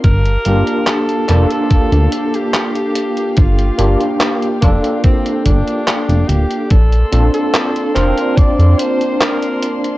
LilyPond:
<<
  \new Staff \with { instrumentName = "String section" } { \time 4/4 \key g \minor \tempo 4 = 72 << { a''1 | g''1 | <a'' c'''>1 | } \\ { <g' f''>1~ | <g' f''>1 | <bes d''>1 | } >> }
  \new Staff \with { instrumentName = "Alto saxophone" } { \time 4/4 \key g \minor bes'4 a'8. a'4 g'4~ g'16 | f'4 r8 d'8 c'8 d'4 g'8 | a'8. a'8. bes'8 d''8 c''8 bes'8. r16 | }
  \new Staff \with { instrumentName = "Tine electric piano" } { \time 4/4 \key g \minor r8 <bes d' f' g'>4 <bes d' f' a'>2~ <bes d' f' a'>8~ | <bes d' f' a'>8 <bes d' f' g'>4 <bes d' f' a'>2~ <bes d' f' a'>8 | r8 <c' d' f' a'>4 <c' d' f' c''>2~ <c' d' f' c''>8 | }
  \new Staff \with { instrumentName = "Analog synth bass" } { \clef bass \time 4/4 \key g \minor g,,8 g,,16 r8. f,,16 r16 d,16 d,16 r4. | g,,8 g,,16 r8. f,,16 r8. g,,16 r8 f,,16 d,,16 r16 | bes,,8 bes,,16 r8. f,,16 r16 f,16 f,16 r4. | }
  \new DrumStaff \with { instrumentName = "Drums" } \drummode { \time 4/4 <hh bd>16 hh16 hh16 hh16 <hc hh>16 hh16 <hc hh>16 hh16 <hh bd>16 hh16 hh16 hh16 <hc hh>16 hh16 hh16 hh16 | <hh bd>16 hh16 hh16 hh16 <hc hh>16 hh16 <hh bd>16 hh16 <hh bd>16 hh16 <hh bd>16 hh16 <hc hh>16 hh16 hh16 hh16 | <hh bd>16 hh16 hh16 hh16 <hc hh>16 hh16 <hc hh>16 hh16 <hh bd>16 hh16 hh16 hh16 <hc hh>16 hh16 hh16 hh16 | }
>>